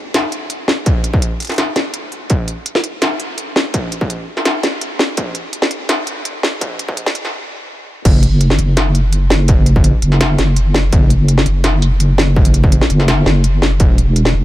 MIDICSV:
0, 0, Header, 1, 3, 480
1, 0, Start_track
1, 0, Tempo, 359281
1, 1154, Time_signature, 4, 2, 24, 8
1, 19297, End_track
2, 0, Start_track
2, 0, Title_t, "Wobble bass"
2, 0, Program_c, 0, 39
2, 10758, Note_on_c, 0, 30, 100
2, 11461, Note_off_c, 0, 30, 0
2, 11472, Note_on_c, 0, 30, 87
2, 13261, Note_off_c, 0, 30, 0
2, 13393, Note_on_c, 0, 30, 89
2, 13859, Note_off_c, 0, 30, 0
2, 13870, Note_on_c, 0, 30, 102
2, 14577, Note_off_c, 0, 30, 0
2, 14600, Note_on_c, 0, 30, 96
2, 15302, Note_off_c, 0, 30, 0
2, 15318, Note_on_c, 0, 30, 90
2, 17104, Note_off_c, 0, 30, 0
2, 17237, Note_on_c, 0, 30, 85
2, 17701, Note_off_c, 0, 30, 0
2, 17714, Note_on_c, 0, 30, 101
2, 18419, Note_off_c, 0, 30, 0
2, 18440, Note_on_c, 0, 28, 99
2, 19142, Note_off_c, 0, 28, 0
2, 19152, Note_on_c, 0, 28, 89
2, 19297, Note_off_c, 0, 28, 0
2, 19297, End_track
3, 0, Start_track
3, 0, Title_t, "Drums"
3, 192, Note_on_c, 9, 38, 120
3, 192, Note_on_c, 9, 42, 82
3, 326, Note_off_c, 9, 38, 0
3, 326, Note_off_c, 9, 42, 0
3, 429, Note_on_c, 9, 42, 60
3, 562, Note_off_c, 9, 42, 0
3, 667, Note_on_c, 9, 42, 84
3, 801, Note_off_c, 9, 42, 0
3, 908, Note_on_c, 9, 40, 78
3, 1041, Note_off_c, 9, 40, 0
3, 1151, Note_on_c, 9, 42, 73
3, 1152, Note_on_c, 9, 36, 127
3, 1285, Note_off_c, 9, 42, 0
3, 1286, Note_off_c, 9, 36, 0
3, 1389, Note_on_c, 9, 42, 67
3, 1516, Note_on_c, 9, 36, 109
3, 1523, Note_off_c, 9, 42, 0
3, 1632, Note_on_c, 9, 42, 78
3, 1650, Note_off_c, 9, 36, 0
3, 1766, Note_off_c, 9, 42, 0
3, 1874, Note_on_c, 9, 42, 58
3, 1902, Note_off_c, 9, 42, 0
3, 1902, Note_on_c, 9, 42, 48
3, 1933, Note_off_c, 9, 42, 0
3, 1933, Note_on_c, 9, 42, 38
3, 1966, Note_off_c, 9, 42, 0
3, 1966, Note_on_c, 9, 42, 32
3, 1996, Note_off_c, 9, 42, 0
3, 1996, Note_on_c, 9, 38, 37
3, 1996, Note_on_c, 9, 42, 28
3, 2027, Note_off_c, 9, 42, 0
3, 2027, Note_on_c, 9, 42, 24
3, 2056, Note_off_c, 9, 42, 0
3, 2056, Note_on_c, 9, 42, 18
3, 2085, Note_off_c, 9, 42, 0
3, 2085, Note_on_c, 9, 42, 15
3, 2112, Note_off_c, 9, 38, 0
3, 2112, Note_off_c, 9, 42, 0
3, 2112, Note_on_c, 9, 38, 122
3, 2112, Note_on_c, 9, 42, 76
3, 2245, Note_off_c, 9, 38, 0
3, 2245, Note_off_c, 9, 42, 0
3, 2350, Note_on_c, 9, 40, 49
3, 2350, Note_on_c, 9, 42, 60
3, 2483, Note_off_c, 9, 40, 0
3, 2483, Note_off_c, 9, 42, 0
3, 2588, Note_on_c, 9, 42, 78
3, 2721, Note_off_c, 9, 42, 0
3, 2832, Note_on_c, 9, 42, 37
3, 2965, Note_off_c, 9, 42, 0
3, 3069, Note_on_c, 9, 42, 72
3, 3075, Note_on_c, 9, 36, 124
3, 3203, Note_off_c, 9, 42, 0
3, 3209, Note_off_c, 9, 36, 0
3, 3311, Note_on_c, 9, 42, 64
3, 3444, Note_off_c, 9, 42, 0
3, 3552, Note_on_c, 9, 42, 77
3, 3675, Note_on_c, 9, 40, 56
3, 3686, Note_off_c, 9, 42, 0
3, 3790, Note_on_c, 9, 42, 64
3, 3809, Note_off_c, 9, 40, 0
3, 3923, Note_off_c, 9, 42, 0
3, 4033, Note_on_c, 9, 38, 116
3, 4033, Note_on_c, 9, 42, 72
3, 4166, Note_off_c, 9, 38, 0
3, 4166, Note_off_c, 9, 42, 0
3, 4270, Note_on_c, 9, 42, 58
3, 4404, Note_off_c, 9, 42, 0
3, 4513, Note_on_c, 9, 42, 72
3, 4647, Note_off_c, 9, 42, 0
3, 4755, Note_on_c, 9, 40, 75
3, 4889, Note_off_c, 9, 40, 0
3, 4996, Note_on_c, 9, 42, 70
3, 4997, Note_on_c, 9, 36, 117
3, 5129, Note_off_c, 9, 42, 0
3, 5130, Note_off_c, 9, 36, 0
3, 5237, Note_on_c, 9, 42, 63
3, 5360, Note_on_c, 9, 36, 105
3, 5371, Note_off_c, 9, 42, 0
3, 5478, Note_on_c, 9, 42, 76
3, 5494, Note_off_c, 9, 36, 0
3, 5611, Note_off_c, 9, 42, 0
3, 5837, Note_on_c, 9, 38, 36
3, 5951, Note_off_c, 9, 38, 0
3, 5951, Note_on_c, 9, 38, 113
3, 5951, Note_on_c, 9, 42, 72
3, 6085, Note_off_c, 9, 38, 0
3, 6085, Note_off_c, 9, 42, 0
3, 6191, Note_on_c, 9, 40, 50
3, 6191, Note_on_c, 9, 42, 56
3, 6325, Note_off_c, 9, 40, 0
3, 6325, Note_off_c, 9, 42, 0
3, 6432, Note_on_c, 9, 42, 76
3, 6566, Note_off_c, 9, 42, 0
3, 6671, Note_on_c, 9, 40, 75
3, 6804, Note_off_c, 9, 40, 0
3, 6910, Note_on_c, 9, 42, 78
3, 6915, Note_on_c, 9, 36, 119
3, 7044, Note_off_c, 9, 42, 0
3, 7049, Note_off_c, 9, 36, 0
3, 7145, Note_on_c, 9, 42, 64
3, 7279, Note_off_c, 9, 42, 0
3, 7388, Note_on_c, 9, 42, 75
3, 7509, Note_on_c, 9, 40, 63
3, 7521, Note_off_c, 9, 42, 0
3, 7627, Note_on_c, 9, 42, 65
3, 7643, Note_off_c, 9, 40, 0
3, 7760, Note_off_c, 9, 42, 0
3, 7870, Note_on_c, 9, 38, 116
3, 7870, Note_on_c, 9, 42, 75
3, 8003, Note_off_c, 9, 38, 0
3, 8003, Note_off_c, 9, 42, 0
3, 8109, Note_on_c, 9, 42, 59
3, 8243, Note_off_c, 9, 42, 0
3, 8353, Note_on_c, 9, 42, 78
3, 8486, Note_off_c, 9, 42, 0
3, 8595, Note_on_c, 9, 40, 81
3, 8728, Note_off_c, 9, 40, 0
3, 8834, Note_on_c, 9, 36, 114
3, 8837, Note_on_c, 9, 42, 80
3, 8968, Note_off_c, 9, 36, 0
3, 8970, Note_off_c, 9, 42, 0
3, 9076, Note_on_c, 9, 42, 70
3, 9198, Note_on_c, 9, 36, 104
3, 9209, Note_off_c, 9, 42, 0
3, 9314, Note_on_c, 9, 42, 82
3, 9332, Note_off_c, 9, 36, 0
3, 9438, Note_on_c, 9, 40, 68
3, 9448, Note_off_c, 9, 42, 0
3, 9553, Note_on_c, 9, 42, 64
3, 9571, Note_off_c, 9, 40, 0
3, 9682, Note_on_c, 9, 38, 37
3, 9687, Note_off_c, 9, 42, 0
3, 9815, Note_off_c, 9, 38, 0
3, 10757, Note_on_c, 9, 36, 126
3, 10758, Note_on_c, 9, 42, 78
3, 10758, Note_on_c, 9, 49, 96
3, 10890, Note_off_c, 9, 36, 0
3, 10891, Note_off_c, 9, 42, 0
3, 10891, Note_off_c, 9, 49, 0
3, 10993, Note_on_c, 9, 42, 71
3, 11126, Note_off_c, 9, 42, 0
3, 11232, Note_on_c, 9, 42, 82
3, 11359, Note_on_c, 9, 40, 65
3, 11366, Note_off_c, 9, 42, 0
3, 11472, Note_on_c, 9, 42, 68
3, 11493, Note_off_c, 9, 40, 0
3, 11605, Note_off_c, 9, 42, 0
3, 11716, Note_on_c, 9, 38, 114
3, 11716, Note_on_c, 9, 42, 83
3, 11850, Note_off_c, 9, 38, 0
3, 11850, Note_off_c, 9, 42, 0
3, 11955, Note_on_c, 9, 42, 65
3, 12089, Note_off_c, 9, 42, 0
3, 12192, Note_on_c, 9, 42, 82
3, 12325, Note_off_c, 9, 42, 0
3, 12429, Note_on_c, 9, 40, 81
3, 12563, Note_off_c, 9, 40, 0
3, 12667, Note_on_c, 9, 42, 75
3, 12675, Note_on_c, 9, 36, 127
3, 12800, Note_off_c, 9, 42, 0
3, 12809, Note_off_c, 9, 36, 0
3, 12909, Note_on_c, 9, 42, 70
3, 13039, Note_on_c, 9, 36, 116
3, 13042, Note_off_c, 9, 42, 0
3, 13147, Note_on_c, 9, 42, 85
3, 13172, Note_off_c, 9, 36, 0
3, 13281, Note_off_c, 9, 42, 0
3, 13390, Note_on_c, 9, 42, 65
3, 13518, Note_on_c, 9, 38, 38
3, 13524, Note_off_c, 9, 42, 0
3, 13636, Note_off_c, 9, 38, 0
3, 13636, Note_on_c, 9, 38, 127
3, 13636, Note_on_c, 9, 42, 83
3, 13770, Note_off_c, 9, 38, 0
3, 13770, Note_off_c, 9, 42, 0
3, 13875, Note_on_c, 9, 40, 53
3, 13875, Note_on_c, 9, 42, 67
3, 14008, Note_off_c, 9, 40, 0
3, 14008, Note_off_c, 9, 42, 0
3, 14114, Note_on_c, 9, 42, 86
3, 14248, Note_off_c, 9, 42, 0
3, 14354, Note_on_c, 9, 40, 83
3, 14487, Note_off_c, 9, 40, 0
3, 14596, Note_on_c, 9, 42, 77
3, 14597, Note_on_c, 9, 36, 127
3, 14730, Note_off_c, 9, 42, 0
3, 14731, Note_off_c, 9, 36, 0
3, 14834, Note_on_c, 9, 42, 70
3, 14968, Note_off_c, 9, 42, 0
3, 15076, Note_on_c, 9, 42, 81
3, 15199, Note_on_c, 9, 40, 61
3, 15209, Note_off_c, 9, 42, 0
3, 15310, Note_on_c, 9, 42, 66
3, 15332, Note_off_c, 9, 40, 0
3, 15444, Note_off_c, 9, 42, 0
3, 15551, Note_on_c, 9, 38, 123
3, 15551, Note_on_c, 9, 42, 76
3, 15684, Note_off_c, 9, 38, 0
3, 15684, Note_off_c, 9, 42, 0
3, 15794, Note_on_c, 9, 42, 64
3, 15928, Note_off_c, 9, 42, 0
3, 16033, Note_on_c, 9, 42, 83
3, 16167, Note_off_c, 9, 42, 0
3, 16275, Note_on_c, 9, 40, 78
3, 16409, Note_off_c, 9, 40, 0
3, 16519, Note_on_c, 9, 36, 127
3, 16634, Note_on_c, 9, 42, 74
3, 16652, Note_off_c, 9, 36, 0
3, 16754, Note_off_c, 9, 42, 0
3, 16754, Note_on_c, 9, 42, 70
3, 16882, Note_on_c, 9, 36, 108
3, 16888, Note_off_c, 9, 42, 0
3, 16995, Note_on_c, 9, 42, 76
3, 17016, Note_off_c, 9, 36, 0
3, 17120, Note_on_c, 9, 40, 60
3, 17129, Note_off_c, 9, 42, 0
3, 17234, Note_on_c, 9, 42, 62
3, 17253, Note_off_c, 9, 40, 0
3, 17363, Note_on_c, 9, 38, 39
3, 17368, Note_off_c, 9, 42, 0
3, 17476, Note_off_c, 9, 38, 0
3, 17476, Note_on_c, 9, 38, 123
3, 17476, Note_on_c, 9, 42, 80
3, 17610, Note_off_c, 9, 38, 0
3, 17610, Note_off_c, 9, 42, 0
3, 17717, Note_on_c, 9, 40, 52
3, 17850, Note_off_c, 9, 40, 0
3, 17956, Note_on_c, 9, 42, 79
3, 18090, Note_off_c, 9, 42, 0
3, 18197, Note_on_c, 9, 40, 72
3, 18331, Note_off_c, 9, 40, 0
3, 18435, Note_on_c, 9, 42, 72
3, 18438, Note_on_c, 9, 36, 127
3, 18568, Note_off_c, 9, 42, 0
3, 18571, Note_off_c, 9, 36, 0
3, 18679, Note_on_c, 9, 42, 63
3, 18813, Note_off_c, 9, 42, 0
3, 18918, Note_on_c, 9, 42, 71
3, 19041, Note_on_c, 9, 40, 60
3, 19052, Note_off_c, 9, 42, 0
3, 19175, Note_off_c, 9, 40, 0
3, 19297, End_track
0, 0, End_of_file